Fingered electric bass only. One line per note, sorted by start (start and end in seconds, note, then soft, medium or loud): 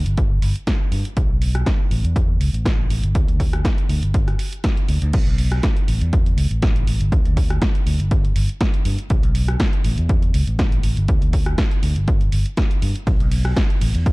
0.06 0.38 G1 medium
0.42 0.52 G1 medium
0.92 1.02 G2 medium
1.17 1.27 B1 loud
1.30 1.62 B1 loud
1.91 2.01 A1 medium
2.04 2.36 E2 medium
2.40 2.50 C#2 loud
2.53 2.86 A1 medium
2.90 3.00 A1 medium
3.03 3.12 G1 loud
3.15 3.25 D2 loud
3.28 3.60 D2 loud
3.89 3.99 D2 medium
4.03 4.35 G1 medium
4.89 4.99 D2 loud
5.02 5.11 D2 loud
5.14 5.24 B1 loud
5.27 5.59 B1 loud
5.88 5.98 A1 medium
6.01 6.33 E2 medium
6.37 6.47 C#2 loud
6.51 6.82 A1 loud
6.87 6.97 A1 medium
7.00 7.09 G1 loud
7.12 7.22 D2 loud
7.25 7.57 D2 loud
7.86 7.96 D2 medium
8.00 8.31 G1 medium
8.36 8.46 G1 loud
8.85 8.95 G2 medium
9.10 9.20 B1 loud
9.23 9.55 B1 loud
9.84 9.95 A1 medium
9.98 10.30 E2 medium
10.34 10.44 C#2 loud
10.47 10.79 A1 loud
10.84 10.94 A1 medium
10.97 11.06 G1 loud
11.09 11.19 D2 loud
11.22 11.54 D2 loud
11.83 11.93 D2 medium
11.96 12.28 G1 medium
12.33 12.43 G1 loud
12.82 12.92 G2 loud
13.07 13.17 B1 loud
13.20 13.52 B1 loud
13.81 13.91 A1 medium
13.94 14.12 E2 medium